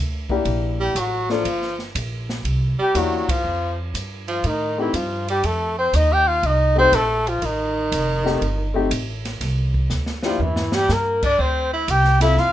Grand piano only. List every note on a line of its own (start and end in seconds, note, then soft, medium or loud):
0.30 0.92 A#3 medium
0.30 0.93 D4 medium
0.30 0.93 E4 soft
0.30 0.93 G4 medium
1.30 1.44 A#3 medium
1.30 1.44 D4 medium
1.30 1.44 F4 medium
1.30 1.44 A4 medium
2.95 3.25 A#3 medium
2.95 3.25 D4 medium
2.95 3.25 E4 medium
2.95 3.26 G4 medium
4.78 4.92 A3 medium
4.78 4.92 C4 soft
4.78 4.92 D#4 soft
4.78 4.93 G4 medium
6.75 6.90 A3 medium
6.75 6.90 C4 soft
6.75 6.91 D#4 medium
6.75 6.91 G4 medium
8.24 8.39 A3 medium
8.24 8.39 C4 medium
8.24 8.39 D#4 medium
8.24 8.40 G4 medium
8.74 8.89 A3 medium
8.74 8.89 C4 medium
8.74 8.89 D#4 medium
8.74 8.90 G4 medium
10.24 10.38 A#3 medium
10.24 10.38 D4 medium
10.24 10.38 E4 medium
10.24 10.39 G4 medium
12.20 12.35 C4 medium
12.20 12.35 E4 medium
12.20 12.35 F4 medium
12.20 12.36 A4 medium